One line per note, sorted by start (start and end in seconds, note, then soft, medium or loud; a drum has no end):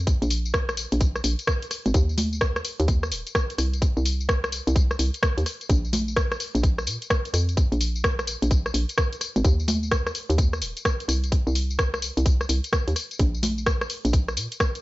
0.00 0.16 F2 medium
0.07 kick loud
0.07 closed hi-hat medium
0.07 tambourine soft
0.22 0.86 A#1 loud
0.22 closed hi-hat soft
0.22 tambourine soft
0.30 open hi-hat loud
0.30 tambourine medium
0.45 tambourine soft
0.54 kick loud
0.54 cross-stick loud
0.54 tambourine soft
0.69 cross-stick medium
0.69 tambourine soft
0.77 open hi-hat loud
0.77 tambourine medium
0.92 1.21 A#1 medium
0.92 closed hi-hat medium
0.92 tambourine soft
1.01 kick loud
1.01 closed hi-hat medium
1.01 tambourine soft
1.16 cross-stick medium
1.16 tambourine soft
1.24 1.35 A#1 medium
1.24 open hi-hat loud
1.24 tambourine medium
1.39 closed hi-hat medium
1.39 tambourine soft
1.47 kick loud
1.47 cross-stick loud
1.47 tambourine soft
1.62 closed hi-hat medium
1.62 tambourine soft
1.71 cross-stick soft
1.71 open hi-hat loud
1.71 tambourine medium
1.86 1.92 G#1 loud
1.86 closed hi-hat soft
1.86 tambourine soft
1.94 2.61 D#2 loud
1.94 kick loud
1.94 closed hi-hat medium
1.94 tambourine soft
2.09 tambourine soft
2.18 open hi-hat loud
2.18 tambourine medium
2.18 high conga medium
2.33 tambourine soft
2.41 kick loud
2.41 cross-stick loud
2.41 tambourine soft
2.56 cross-stick medium
2.56 tambourine soft
2.65 open hi-hat loud
2.65 tambourine medium
2.80 3.13 D#2 loud
2.80 closed hi-hat medium
2.80 tambourine soft
2.88 kick loud
2.88 closed hi-hat medium
2.88 tambourine soft
3.03 cross-stick medium
3.03 tambourine soft
3.12 3.23 D#1 medium
3.12 open hi-hat loud
3.12 tambourine medium
3.27 closed hi-hat medium
3.27 tambourine soft
3.35 kick loud
3.35 cross-stick loud
3.35 tambourine soft
3.50 closed hi-hat medium
3.50 tambourine soft
3.58 3.91 C2 medium
3.58 cross-stick soft
3.58 open hi-hat loud
3.58 tambourine medium
3.73 closed hi-hat soft
3.73 tambourine soft
3.82 kick loud
3.82 closed hi-hat medium
3.82 tambourine soft
3.97 4.61 C2 loud
3.97 tambourine soft
4.05 open hi-hat loud
4.05 tambourine medium
4.21 tambourine soft
4.29 kick loud
4.29 cross-stick loud
4.29 tambourine soft
4.44 cross-stick medium
4.44 tambourine soft
4.52 open hi-hat medium
4.52 tambourine medium
4.67 4.96 C2 loud
4.67 closed hi-hat medium
4.67 tambourine soft
4.76 kick loud
4.76 closed hi-hat medium
4.76 tambourine soft
4.91 cross-stick medium
4.91 tambourine soft
4.99 5.10 C2 medium
4.99 open hi-hat loud
4.99 tambourine medium
5.14 closed hi-hat medium
5.14 tambourine soft
5.23 kick loud
5.23 cross-stick loud
5.23 tambourine soft
5.38 5.44 D#2 medium
5.38 closed hi-hat medium
5.38 tambourine soft
5.46 cross-stick soft
5.46 open hi-hat loud
5.46 tambourine medium
5.61 closed hi-hat soft
5.61 tambourine soft
5.70 6.36 A#1 loud
5.70 kick loud
5.70 closed hi-hat medium
5.70 tambourine soft
5.85 tambourine soft
5.93 open hi-hat loud
5.93 tambourine medium
5.93 high conga medium
6.08 tambourine soft
6.17 kick loud
6.17 cross-stick loud
6.17 tambourine soft
6.32 cross-stick medium
6.32 tambourine soft
6.40 open hi-hat medium
6.40 tambourine medium
6.55 6.88 A#1 loud
6.55 closed hi-hat medium
6.55 tambourine soft
6.63 kick loud
6.63 closed hi-hat medium
6.63 tambourine soft
6.78 cross-stick medium
6.78 tambourine soft
6.87 6.98 A#2 medium
6.87 open hi-hat loud
6.87 tambourine medium
7.02 closed hi-hat medium
7.02 tambourine soft
7.10 kick loud
7.10 cross-stick loud
7.10 tambourine soft
7.25 closed hi-hat soft
7.25 tambourine soft
7.34 7.66 F2 medium
7.34 cross-stick soft
7.34 open hi-hat medium
7.34 tambourine medium
7.49 closed hi-hat soft
7.49 tambourine soft
7.57 kick loud
7.57 closed hi-hat medium
7.57 tambourine soft
7.72 8.36 A#1 loud
7.72 closed hi-hat soft
7.72 tambourine soft
7.81 open hi-hat loud
7.81 tambourine medium
7.96 tambourine soft
8.04 kick loud
8.04 cross-stick loud
8.04 tambourine soft
8.19 cross-stick medium
8.19 tambourine soft
8.27 open hi-hat medium
8.27 tambourine medium
8.42 8.71 A#1 medium
8.42 closed hi-hat medium
8.42 tambourine soft
8.51 kick loud
8.51 closed hi-hat medium
8.51 tambourine soft
8.66 cross-stick medium
8.66 tambourine soft
8.74 8.85 A#1 medium
8.74 open hi-hat loud
8.74 tambourine medium
8.89 closed hi-hat medium
8.89 tambourine soft
8.98 kick loud
8.98 cross-stick loud
8.98 tambourine soft
9.13 closed hi-hat medium
9.13 tambourine soft
9.21 cross-stick soft
9.21 open hi-hat medium
9.21 tambourine medium
9.36 9.42 G#1 loud
9.36 closed hi-hat soft
9.36 tambourine soft
9.45 10.12 D#2 loud
9.45 kick loud
9.45 closed hi-hat medium
9.45 tambourine soft
9.60 tambourine soft
9.68 open hi-hat loud
9.68 tambourine medium
9.68 high conga medium
9.83 tambourine soft
9.91 kick loud
9.91 cross-stick loud
9.91 tambourine soft
10.07 cross-stick medium
10.07 tambourine soft
10.15 open hi-hat medium
10.15 tambourine medium
10.30 10.63 D#2 loud
10.30 closed hi-hat medium
10.30 tambourine soft
10.38 kick loud
10.38 closed hi-hat medium
10.38 tambourine soft
10.53 cross-stick medium
10.53 tambourine soft
10.62 10.73 D#1 medium
10.62 open hi-hat loud
10.62 tambourine medium
10.77 closed hi-hat medium
10.77 tambourine soft
10.85 kick loud
10.85 cross-stick loud
10.85 tambourine soft
11.00 closed hi-hat medium
11.00 tambourine soft
11.08 11.41 C2 medium
11.08 cross-stick soft
11.08 open hi-hat medium
11.08 tambourine medium
11.24 closed hi-hat soft
11.24 tambourine soft
11.32 kick loud
11.32 closed hi-hat medium
11.32 tambourine soft
11.47 12.11 C2 loud
11.47 tambourine soft
11.55 open hi-hat loud
11.55 tambourine medium
11.70 tambourine soft
11.79 kick loud
11.79 cross-stick loud
11.79 tambourine soft
11.94 cross-stick medium
11.94 tambourine soft
12.02 open hi-hat medium
12.02 tambourine medium
12.17 12.46 C2 medium
12.17 closed hi-hat medium
12.17 tambourine soft
12.26 kick loud
12.26 closed hi-hat medium
12.26 tambourine soft
12.41 cross-stick medium
12.41 tambourine soft
12.49 12.60 C2 medium
12.49 open hi-hat loud
12.49 tambourine medium
12.64 closed hi-hat medium
12.64 tambourine soft
12.73 kick loud
12.73 cross-stick loud
12.73 tambourine soft
12.88 12.94 D#2 medium
12.88 closed hi-hat medium
12.88 tambourine soft
12.96 cross-stick soft
12.96 open hi-hat loud
12.96 tambourine medium
13.11 closed hi-hat soft
13.11 tambourine soft
13.19 13.86 A#1 loud
13.19 kick loud
13.19 closed hi-hat medium
13.19 tambourine soft
13.35 tambourine soft
13.43 open hi-hat loud
13.43 tambourine medium
13.43 high conga medium
13.58 tambourine soft
13.66 kick loud
13.66 cross-stick loud
13.66 tambourine soft
13.81 cross-stick medium
13.81 tambourine soft
13.90 open hi-hat medium
13.90 tambourine medium
14.05 14.38 A#1 loud
14.05 closed hi-hat medium
14.05 tambourine soft
14.13 kick loud
14.13 closed hi-hat medium
14.13 tambourine soft
14.28 cross-stick medium
14.28 tambourine soft
14.37 14.48 A#2 medium
14.37 open hi-hat loud
14.37 tambourine medium
14.52 closed hi-hat medium
14.52 tambourine soft
14.60 kick loud
14.60 cross-stick loud
14.60 tambourine soft
14.75 closed hi-hat medium
14.75 tambourine soft